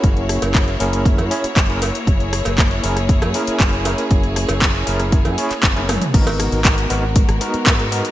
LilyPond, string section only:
\new Staff \with { instrumentName = "String section" } { \time 4/4 \key fis \mixolydian \tempo 4 = 118 << { <ais e' cis''>1~ | <ais e' cis''>1~ | <ais e' cis''>1 | <gis b ais'>1 | } \\ { fis'1 | gis'1~ | gis'1 | fis'1 | } >> }